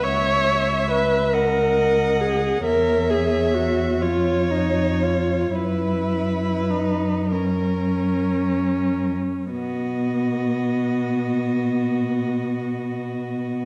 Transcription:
0, 0, Header, 1, 5, 480
1, 0, Start_track
1, 0, Key_signature, 5, "major"
1, 0, Tempo, 875912
1, 20, Time_signature, 6, 3, 24, 8
1, 1940, Tempo, 964630
1, 2420, Tempo, 1043478
1, 2900, Tempo, 1142857
1, 3380, Tempo, 1295896
1, 3860, Tempo, 1534527
1, 4340, Tempo, 1392111
1, 5763, End_track
2, 0, Start_track
2, 0, Title_t, "Violin"
2, 0, Program_c, 0, 40
2, 22, Note_on_c, 0, 76, 69
2, 736, Note_on_c, 0, 78, 59
2, 744, Note_off_c, 0, 76, 0
2, 1452, Note_off_c, 0, 78, 0
2, 1455, Note_on_c, 0, 76, 62
2, 2179, Note_on_c, 0, 73, 59
2, 2186, Note_off_c, 0, 76, 0
2, 2906, Note_on_c, 0, 71, 53
2, 2912, Note_off_c, 0, 73, 0
2, 3609, Note_off_c, 0, 71, 0
2, 3611, Note_on_c, 0, 70, 39
2, 3971, Note_off_c, 0, 70, 0
2, 4342, Note_on_c, 0, 66, 43
2, 5763, Note_off_c, 0, 66, 0
2, 5763, End_track
3, 0, Start_track
3, 0, Title_t, "Violin"
3, 0, Program_c, 1, 40
3, 19, Note_on_c, 1, 76, 56
3, 731, Note_on_c, 1, 75, 57
3, 739, Note_off_c, 1, 76, 0
3, 1441, Note_off_c, 1, 75, 0
3, 1444, Note_on_c, 1, 73, 58
3, 2159, Note_off_c, 1, 73, 0
3, 2177, Note_on_c, 1, 73, 53
3, 2903, Note_on_c, 1, 71, 53
3, 2909, Note_off_c, 1, 73, 0
3, 3608, Note_off_c, 1, 71, 0
3, 3611, Note_on_c, 1, 70, 44
3, 4226, Note_off_c, 1, 70, 0
3, 4341, Note_on_c, 1, 75, 42
3, 5763, Note_off_c, 1, 75, 0
3, 5763, End_track
4, 0, Start_track
4, 0, Title_t, "Viola"
4, 0, Program_c, 2, 41
4, 20, Note_on_c, 2, 73, 85
4, 491, Note_off_c, 2, 73, 0
4, 495, Note_on_c, 2, 71, 75
4, 732, Note_on_c, 2, 70, 75
4, 740, Note_off_c, 2, 71, 0
4, 1210, Note_on_c, 2, 68, 70
4, 1219, Note_off_c, 2, 70, 0
4, 1446, Note_off_c, 2, 68, 0
4, 1449, Note_on_c, 2, 70, 78
4, 1698, Note_on_c, 2, 68, 64
4, 1706, Note_off_c, 2, 70, 0
4, 1940, Note_on_c, 2, 66, 66
4, 1947, Note_off_c, 2, 68, 0
4, 2176, Note_on_c, 2, 65, 67
4, 2183, Note_off_c, 2, 66, 0
4, 2423, Note_on_c, 2, 63, 66
4, 2430, Note_off_c, 2, 65, 0
4, 2661, Note_on_c, 2, 65, 59
4, 2667, Note_off_c, 2, 63, 0
4, 2902, Note_off_c, 2, 65, 0
4, 2904, Note_on_c, 2, 64, 66
4, 3382, Note_on_c, 2, 63, 57
4, 3387, Note_off_c, 2, 64, 0
4, 3612, Note_on_c, 2, 61, 57
4, 3618, Note_off_c, 2, 63, 0
4, 4338, Note_off_c, 2, 61, 0
4, 4340, Note_on_c, 2, 59, 53
4, 5763, Note_off_c, 2, 59, 0
4, 5763, End_track
5, 0, Start_track
5, 0, Title_t, "Cello"
5, 0, Program_c, 3, 42
5, 22, Note_on_c, 3, 37, 51
5, 1429, Note_off_c, 3, 37, 0
5, 1454, Note_on_c, 3, 40, 51
5, 2177, Note_on_c, 3, 41, 51
5, 2185, Note_off_c, 3, 40, 0
5, 2898, Note_off_c, 3, 41, 0
5, 2900, Note_on_c, 3, 42, 48
5, 4224, Note_off_c, 3, 42, 0
5, 4339, Note_on_c, 3, 47, 37
5, 5763, Note_off_c, 3, 47, 0
5, 5763, End_track
0, 0, End_of_file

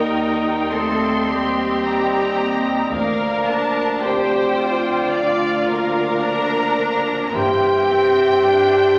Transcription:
0, 0, Header, 1, 9, 480
1, 0, Start_track
1, 0, Key_signature, -2, "major"
1, 0, Tempo, 1104972
1, 1278, Time_signature, 4, 2, 24, 8
1, 1278, Tempo, 1083032
1, 2718, Tempo, 1165049
1, 3198, Tempo, 1092896
1, 3915, End_track
2, 0, Start_track
2, 0, Title_t, "Violin section"
2, 0, Program_c, 0, 48
2, 0, Note_on_c, 0, 79, 36
2, 304, Note_off_c, 0, 79, 0
2, 317, Note_on_c, 0, 84, 40
2, 799, Note_on_c, 0, 82, 39
2, 801, Note_off_c, 0, 84, 0
2, 1276, Note_on_c, 0, 77, 38
2, 1277, Note_off_c, 0, 82, 0
2, 1512, Note_off_c, 0, 77, 0
2, 1520, Note_on_c, 0, 81, 44
2, 1758, Note_off_c, 0, 81, 0
2, 1760, Note_on_c, 0, 79, 42
2, 2236, Note_off_c, 0, 79, 0
2, 2236, Note_on_c, 0, 77, 42
2, 2719, Note_off_c, 0, 77, 0
2, 2722, Note_on_c, 0, 82, 45
2, 3200, Note_off_c, 0, 82, 0
2, 3203, Note_on_c, 0, 76, 46
2, 3915, Note_off_c, 0, 76, 0
2, 3915, End_track
3, 0, Start_track
3, 0, Title_t, "Cor anglais"
3, 0, Program_c, 1, 69
3, 0, Note_on_c, 1, 75, 36
3, 1254, Note_off_c, 1, 75, 0
3, 1273, Note_on_c, 1, 74, 42
3, 3120, Note_off_c, 1, 74, 0
3, 3190, Note_on_c, 1, 72, 44
3, 3434, Note_off_c, 1, 72, 0
3, 3441, Note_on_c, 1, 72, 42
3, 3675, Note_off_c, 1, 72, 0
3, 3689, Note_on_c, 1, 72, 41
3, 3915, Note_off_c, 1, 72, 0
3, 3915, End_track
4, 0, Start_track
4, 0, Title_t, "Violin section"
4, 0, Program_c, 2, 48
4, 0, Note_on_c, 2, 70, 51
4, 310, Note_on_c, 2, 69, 53
4, 315, Note_off_c, 2, 70, 0
4, 552, Note_on_c, 2, 67, 51
4, 555, Note_off_c, 2, 69, 0
4, 1273, Note_on_c, 2, 70, 61
4, 1275, Note_off_c, 2, 67, 0
4, 1745, Note_off_c, 2, 70, 0
4, 1759, Note_on_c, 2, 72, 54
4, 2233, Note_on_c, 2, 74, 62
4, 2236, Note_off_c, 2, 72, 0
4, 2471, Note_on_c, 2, 70, 61
4, 2474, Note_off_c, 2, 74, 0
4, 3194, Note_on_c, 2, 79, 78
4, 3196, Note_off_c, 2, 70, 0
4, 3915, Note_off_c, 2, 79, 0
4, 3915, End_track
5, 0, Start_track
5, 0, Title_t, "Viola section"
5, 0, Program_c, 3, 48
5, 0, Note_on_c, 3, 63, 47
5, 305, Note_off_c, 3, 63, 0
5, 319, Note_on_c, 3, 60, 46
5, 1279, Note_off_c, 3, 60, 0
5, 1282, Note_on_c, 3, 58, 36
5, 1520, Note_off_c, 3, 58, 0
5, 1520, Note_on_c, 3, 62, 41
5, 1758, Note_off_c, 3, 62, 0
5, 1762, Note_on_c, 3, 67, 54
5, 1994, Note_off_c, 3, 67, 0
5, 2004, Note_on_c, 3, 65, 44
5, 2722, Note_off_c, 3, 65, 0
5, 2722, Note_on_c, 3, 62, 50
5, 3191, Note_off_c, 3, 62, 0
5, 3198, Note_on_c, 3, 58, 47
5, 3440, Note_on_c, 3, 60, 48
5, 3443, Note_off_c, 3, 58, 0
5, 3677, Note_on_c, 3, 62, 53
5, 3679, Note_off_c, 3, 60, 0
5, 3915, Note_off_c, 3, 62, 0
5, 3915, End_track
6, 0, Start_track
6, 0, Title_t, "French horn section"
6, 0, Program_c, 4, 60
6, 0, Note_on_c, 4, 58, 45
6, 308, Note_on_c, 4, 57, 41
6, 312, Note_off_c, 4, 58, 0
6, 548, Note_on_c, 4, 55, 44
6, 554, Note_off_c, 4, 57, 0
6, 1200, Note_off_c, 4, 55, 0
6, 1273, Note_on_c, 4, 58, 49
6, 1745, Note_off_c, 4, 58, 0
6, 1761, Note_on_c, 4, 60, 50
6, 2227, Note_off_c, 4, 60, 0
6, 2235, Note_on_c, 4, 62, 47
6, 2469, Note_on_c, 4, 58, 52
6, 2475, Note_off_c, 4, 62, 0
6, 3196, Note_off_c, 4, 58, 0
6, 3196, Note_on_c, 4, 67, 68
6, 3915, Note_off_c, 4, 67, 0
6, 3915, End_track
7, 0, Start_track
7, 0, Title_t, "Bassoon"
7, 0, Program_c, 5, 70
7, 0, Note_on_c, 5, 55, 37
7, 1258, Note_off_c, 5, 55, 0
7, 1276, Note_on_c, 5, 53, 40
7, 3123, Note_off_c, 5, 53, 0
7, 3193, Note_on_c, 5, 52, 44
7, 3435, Note_off_c, 5, 52, 0
7, 3437, Note_on_c, 5, 52, 42
7, 3673, Note_off_c, 5, 52, 0
7, 3677, Note_on_c, 5, 52, 46
7, 3912, Note_off_c, 5, 52, 0
7, 3915, End_track
8, 0, Start_track
8, 0, Title_t, "Cello section"
8, 0, Program_c, 6, 48
8, 0, Note_on_c, 6, 39, 37
8, 1257, Note_off_c, 6, 39, 0
8, 1275, Note_on_c, 6, 38, 39
8, 3197, Note_off_c, 6, 38, 0
8, 3197, Note_on_c, 6, 43, 43
8, 3915, Note_off_c, 6, 43, 0
8, 3915, End_track
9, 0, Start_track
9, 0, Title_t, "Double bass section"
9, 0, Program_c, 7, 48
9, 1271, Note_on_c, 7, 38, 41
9, 1736, Note_off_c, 7, 38, 0
9, 3197, Note_on_c, 7, 31, 47
9, 3662, Note_off_c, 7, 31, 0
9, 3915, End_track
0, 0, End_of_file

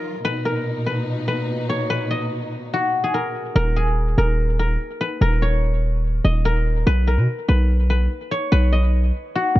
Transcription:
0, 0, Header, 1, 4, 480
1, 0, Start_track
1, 0, Key_signature, -6, "minor"
1, 0, Tempo, 413793
1, 284, Time_signature, 4, 2, 24, 8
1, 11133, End_track
2, 0, Start_track
2, 0, Title_t, "Guzheng"
2, 0, Program_c, 0, 107
2, 0, Note_on_c, 0, 70, 82
2, 0, Note_on_c, 0, 73, 74
2, 0, Note_on_c, 0, 75, 72
2, 286, Note_on_c, 0, 71, 109
2, 356, Note_off_c, 0, 70, 0
2, 524, Note_on_c, 0, 70, 77
2, 594, Note_off_c, 0, 71, 0
2, 824, Note_off_c, 0, 73, 0
2, 1002, Note_on_c, 0, 71, 73
2, 1071, Note_off_c, 0, 70, 0
2, 1478, Note_off_c, 0, 71, 0
2, 1482, Note_on_c, 0, 71, 79
2, 1633, Note_off_c, 0, 75, 0
2, 1965, Note_on_c, 0, 73, 85
2, 2199, Note_off_c, 0, 71, 0
2, 2203, Note_on_c, 0, 71, 99
2, 2442, Note_on_c, 0, 75, 80
2, 3173, Note_on_c, 0, 66, 87
2, 3523, Note_on_c, 0, 68, 79
2, 3644, Note_on_c, 0, 70, 83
2, 3713, Note_off_c, 0, 71, 0
2, 4121, Note_off_c, 0, 70, 0
2, 4125, Note_on_c, 0, 70, 118
2, 4183, Note_off_c, 0, 73, 0
2, 4361, Note_off_c, 0, 68, 0
2, 4366, Note_on_c, 0, 68, 83
2, 4512, Note_off_c, 0, 75, 0
2, 4843, Note_off_c, 0, 70, 0
2, 4847, Note_on_c, 0, 70, 90
2, 5323, Note_off_c, 0, 70, 0
2, 5328, Note_on_c, 0, 70, 79
2, 5808, Note_on_c, 0, 71, 87
2, 5878, Note_off_c, 0, 70, 0
2, 6000, Note_off_c, 0, 66, 0
2, 6050, Note_on_c, 0, 70, 100
2, 6119, Note_off_c, 0, 71, 0
2, 6288, Note_on_c, 0, 73, 77
2, 7003, Note_off_c, 0, 68, 0
2, 7244, Note_on_c, 0, 75, 74
2, 7479, Note_off_c, 0, 70, 0
2, 7484, Note_on_c, 0, 70, 90
2, 7966, Note_on_c, 0, 71, 112
2, 8036, Note_off_c, 0, 70, 0
2, 8206, Note_on_c, 0, 70, 78
2, 8275, Note_off_c, 0, 71, 0
2, 8506, Note_off_c, 0, 73, 0
2, 8682, Note_on_c, 0, 71, 78
2, 8751, Note_off_c, 0, 70, 0
2, 9158, Note_off_c, 0, 71, 0
2, 9163, Note_on_c, 0, 71, 82
2, 9313, Note_off_c, 0, 75, 0
2, 9643, Note_on_c, 0, 73, 87
2, 9876, Note_off_c, 0, 71, 0
2, 9881, Note_on_c, 0, 71, 102
2, 10121, Note_on_c, 0, 75, 81
2, 10852, Note_on_c, 0, 66, 85
2, 11133, Note_off_c, 0, 66, 0
2, 11133, Note_off_c, 0, 71, 0
2, 11133, Note_off_c, 0, 73, 0
2, 11133, Note_off_c, 0, 75, 0
2, 11133, End_track
3, 0, Start_track
3, 0, Title_t, "String section"
3, 0, Program_c, 1, 48
3, 0, Note_on_c, 1, 51, 81
3, 0, Note_on_c, 1, 54, 75
3, 0, Note_on_c, 1, 65, 88
3, 246, Note_off_c, 1, 51, 0
3, 246, Note_off_c, 1, 54, 0
3, 246, Note_off_c, 1, 65, 0
3, 287, Note_on_c, 1, 46, 74
3, 287, Note_on_c, 1, 47, 82
3, 287, Note_on_c, 1, 63, 89
3, 4087, Note_off_c, 1, 46, 0
3, 4087, Note_off_c, 1, 47, 0
3, 4087, Note_off_c, 1, 63, 0
3, 11133, End_track
4, 0, Start_track
4, 0, Title_t, "808-style bass"
4, 0, Program_c, 2, 38
4, 4126, Note_on_c, 2, 27, 111
4, 4816, Note_off_c, 2, 27, 0
4, 4846, Note_on_c, 2, 27, 104
4, 5537, Note_off_c, 2, 27, 0
4, 6046, Note_on_c, 2, 27, 111
4, 7199, Note_off_c, 2, 27, 0
4, 7246, Note_on_c, 2, 27, 101
4, 7936, Note_off_c, 2, 27, 0
4, 7965, Note_on_c, 2, 35, 107
4, 8325, Note_on_c, 2, 47, 101
4, 8342, Note_off_c, 2, 35, 0
4, 8439, Note_off_c, 2, 47, 0
4, 8685, Note_on_c, 2, 35, 103
4, 9376, Note_off_c, 2, 35, 0
4, 9884, Note_on_c, 2, 35, 112
4, 10575, Note_off_c, 2, 35, 0
4, 11085, Note_on_c, 2, 35, 103
4, 11133, Note_off_c, 2, 35, 0
4, 11133, End_track
0, 0, End_of_file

